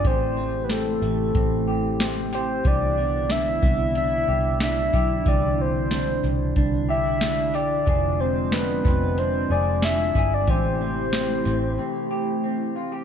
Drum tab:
HH |x-x-x-x-|x-x-x-x-|x-x-x-x-|x-x-x-x-|
SD |--o---o-|--o---o-|--o---o-|--o---o-|
BD |o---o---|o--o---o|o---o---|o--o---o|

HH |x-x-----|
SD |--o-----|
BD |o-------|